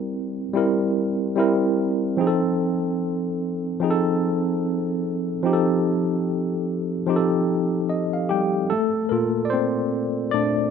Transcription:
Already playing: G3 C4 E4 A#4
0.54 G3 C4 E4 A#4
1.35 G3 C4 E4 A#4
2.17 F3 C4 D#4 G#4
2.27 A4
3.80 F3 C4 D#4 G#4
3.90 A4
5.43 F3 C4 D#4 G4
5.53 A4
7.06 F3 C4 D#4 G4
7.16 A4
7.89 D#5
8.13 F5
8.29 G3 G4 G5
8.70 A3 A4
9.09 A#2 A#3 F4 A4 A#4
9.45 D5
9.50 C4 C5
10.31 A#2 A3 D4 D5

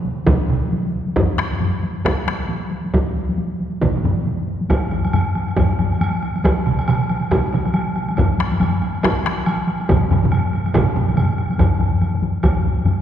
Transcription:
0.05 taiko high
0.27 taiko, taiko mid, taiko high
0.50 taiko mid, taiko high
0.63 taiko high
0.72 taiko high
0.94 taiko high
1.07 taiko high
1.16 taiko, taiko low-mid, taiko high
1.39 taiko rim, taiko high
1.51 taiko high
1.60 taiko low-mid, taiko high
1.83 taiko high
2.04 taiko rim, taiko, taiko high
2.27 taiko rim, taiko high
2.40 taiko high
2.49 taiko high
2.71 taiko high
2.85 taiko high
2.94 taiko, taiko high
3.16 taiko high
3.29 taiko high
3.38 taiko high
3.60 taiko high
3.73 taiko high
3.82 taiko, taiko low-mid, taiko mid, taiko high
3.96 taiko low-mid, taiko mid
4.04 taiko low-mid, taiko mid, taiko high
4.17 taiko high
4.26 taiko high
4.48 taiko high
4.61 taiko high
4.69 taiko, taiko high, high woodblock
4.91 taiko low-mid, taiko high, high woodblock
5.05 taiko high, high woodblock
5.13 taiko low-mid, taiko high, high woodblock
5.35 taiko high, high woodblock
5.48 high woodblock
5.57 taiko, taiko low-mid, taiko high, high woodblock
5.79 taiko low-mid, taiko high, high woodblock
5.92 taiko high, high woodblock
6.01 taiko high, high woodblock
6.23 taiko high, high woodblock
6.36 taiko high, high woodblock
6.44 taiko, taiko high, high woodblock
6.66 taiko mid, taiko high, high woodblock
6.79 taiko high, high woodblock
6.88 taiko mid, taiko high, high woodblock
7.09 taiko high, high woodblock
7.22 high woodblock
7.31 taiko, taiko mid, taiko high, high woodblock
7.53 taiko mid, taiko high, high woodblock
7.66 taiko high, high woodblock
7.74 taiko high, high woodblock
7.96 taiko high, high woodblock
8.08 taiko high, high woodblock
8.17 taiko, taiko low-mid, taiko high, high woodblock
8.39 taiko rim, taiko high, high woodblock
8.52 taiko high, high woodblock
8.60 taiko low-mid, taiko high, high woodblock
8.82 taiko high, high woodblock
8.95 high woodblock
9.03 taiko rim, taiko, taiko high, high woodblock
9.25 taiko rim, taiko high, high woodblock
9.37 taiko high, high woodblock
9.46 taiko high, high woodblock
9.68 taiko high, high woodblock
9.80 taiko high, high woodblock
9.89 taiko, taiko low-mid, taiko mid, taiko high, high woodblock
10.10 taiko low-mid, taiko mid, taiko high, high woodblock
10.23 taiko low-mid, taiko mid, taiko high
10.31 taiko high, high woodblock
10.53 taiko high, high woodblock
10.66 taiko high, high woodblock
10.74 taiko, taiko low-mid, taiko mid, taiko high, high woodblock
10.95 taiko low-mid, taiko mid, taiko high, high woodblock
11.08 taiko high, high woodblock
11.16 taiko low-mid, taiko mid, taiko high, high woodblock
11.37 taiko high, high woodblock
11.50 taiko high, high woodblock
11.58 taiko, taiko low-mid, taiko high, high woodblock
11.71 taiko high
11.80 taiko low-mid, taiko high, high woodblock
11.93 taiko high
12.01 taiko low-mid, taiko high, high woodblock
12.14 taiko low-mid, taiko high
12.22 taiko low-mid, taiko high
12.35 taiko high
12.43 taiko, taiko low-mid, taiko high, high woodblock
12.56 taiko low-mid, taiko high
12.65 taiko low-mid, taiko high
12.78 taiko high
12.85 taiko low-mid, taiko high, high woodblock
12.98 taiko high

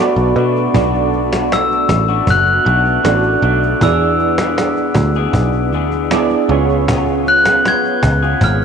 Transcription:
Already playing: B2 B3
0.00 A3 D4 F#4 A4 D5
0.16 B1, cajon slap
0.36 B2 A3 D4 F#4, cajon slap
0.56 cajon slap
0.73 B1 B2 A3 B3 D4 F#4 A4 D5, cajon bass
0.94 cajon slap
1.13 cajon slap
1.32 A3 D4 F#4, cajon slap
1.52 E6, cajon slap
1.71 cajon slap
1.89 A1, cajon bass, cajon slap
2.08 A3 D4 F#4, cajon slap
2.27 F#1 F#6, cajon bass
2.47 cajon slap
2.64 B1 B2 A3 D4 F#4, cajon slap
2.85 cajon slap
3.03 A1 B2 A3 B3 D4 F#4 A4 D5, cajon slap
3.23 cajon slap
3.42 B1 B2 A3 D4 F#4, cajon slap
3.63 cajon slap
3.81 E2 E3 B3 D4 E4 G#4 D5 E6, cajon bass
4.01 cajon slap
4.19 cajon slap
4.38 B3 D4 G#4, cajon slap
4.58 cajon slap
4.76 cajon slap
4.94 D2, cajon bass, cajon slap
5.14 D4 G#4, cajon slap
5.18 B3
5.33 B1, cajon bass
5.53 cajon slap
5.72 D2 E3 B3 D4 G#4, cajon slap
5.91 cajon slap
6.10 E3 B3 D4 E4 G#4 D5, cajon slap
6.29 cajon slap
6.48 C#2 C#3 B3 C#4 F4 G#4 C#5, cajon slap
6.69 cajon slap
6.88 C#3 B3 F4 G#4, cajon bass
7.07 cajon slap
7.26 F#6, cajon slap
7.45 B3 F4 G#4, cajon slap
7.65 G#6, cajon slap
7.85 cajon slap
8.03 C#2, cajon bass, cajon slap
8.22 B3 F4 G#4, cajon slap
8.41 G#1 F6, cajon bass
8.62 cajon slap

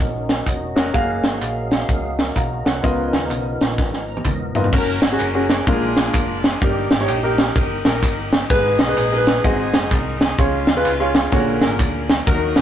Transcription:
Already playing: F#3 C#4 D#4 A#4
0.00 A#1, kick, closed hi-hat, tambourine
0.29 A#4 F#5, snare, closed hi-hat, tambourine
0.47 E1 F#4 D#5, kick, clap, closed hi-hat, tambourine
0.76 F1 C#4 F#4 A#4 D#5, snare, closed hi-hat, tambourine
0.93 F#1 F#3 G#3 A#3 F#4 G#4 F5, kick, closed hi-hat, tambourine
1.24 G#1, snare, closed hi-hat, tambourine
1.41 A#1, clap, closed hi-hat, tambourine
1.71 snare, closed hi-hat, tambourine
1.89 C#2, kick, closed hi-hat, tambourine
2.19 C#4 A#4, snare, closed hi-hat, tambourine
2.36 B1 F#4 D#5 F5 A#5, kick, clap, closed hi-hat, tambourine
2.65 C2 F4 C#5 F#5, snare, closed hi-hat, tambourine
2.83 C#2 C#3 F3 B3 D#4 F4 A#4 D#5, kick, closed hi-hat, tambourine
3.13 D#2, snare, closed hi-hat, tambourine
3.31 B1, clap, closed hi-hat, tambourine
3.61 A#1, snare, closed hi-hat, tambourine
3.78 G#1, kick, snare, tambourine
3.94 snare
4.08 A#5, tambourine
4.17 high tom
4.25 E1 D#5, kick, clap, mid tom, tambourine
4.55 F1 B3 F4 A#4 D#5, floor tom, tambourine
4.64 floor tom
4.72 F#1 C#4 F#4 A#4, kick, crash, tambourine
5.02 G#1 C#5, snare, ride, tambourine
5.12 C#4 F#4 G#4
5.20 F#1 A#4, clap, ride, tambourine
5.35 C#4 F#4 G#4
5.49 A#4, snare, ride, tambourine
5.67 A#1 A#2 G#3 A#3 D4 F4 G#4 A#4, kick, ride, tambourine
5.97 snare, ride, tambourine
6.14 F#1 A#4, kick, clap, ride, tambourine
6.44 G#4, snare, ride, tambourine
6.61 G1 G2 A#3 D#4 G4 A#4, kick, ride, tambourine
6.91 G#1, snare, ride, tambourine
7.00 D#4 G4 C#5
7.08 A#1, clap, ride, tambourine
7.23 D#4 G4 A#4
7.38 snare, ride, tambourine
7.56 G1 D#4 G4 A#4, kick, ride, tambourine
7.85 A#1 D#4 G4 A#4, snare, ride, tambourine
8.03 G1, kick, clap, ride, tambourine
8.33 snare, ride, tambourine
8.50 G#1 G#2 D#4 G#4 B4, kick, ride, tambourine
8.79 B1 D#5, snare, ride, tambourine
8.88 D#4 G#4 B4
8.97 A#1 B4, clap, ride, tambourine
9.11 D#4 G#4 A#4
9.18 B4
9.27 B4, snare, ride, tambourine
9.44 G#1 G#2 C4 D#4 F#4 G#4 D#5, kick, ride, tambourine
9.74 F#1, snare, ride, tambourine
9.91 C2 A#4, kick, clap, ride, tambourine
10.20 G#4, snare, ride, tambourine
10.38 C#2 C#3 G#3 C#4 F4 G#4 C#5, kick, ride, tambourine
10.67 D#2, snare, ride, tambourine
10.77 F4 G#4 B4
10.85 C#2, clap, ride, tambourine
11.00 F4 G#4 C#5
11.14 snare, ride, tambourine
11.32 A#1 A#2 D3 A#3 C#4 D4 F#4 G#4 A#4 C#5, kick, ride, tambourine
11.62 G#1 C#4 D4 A#4, snare, ride, tambourine
11.79 D2, kick, clap, ride, tambourine
12.10 snare, ride, tambourine
12.27 D#2 D#3 F#3 A#3 D4 D#4 F#4 A#4, kick, ride, tambourine
12.33 D#4
12.56 A#1 C#5, snare, ride, tambourine

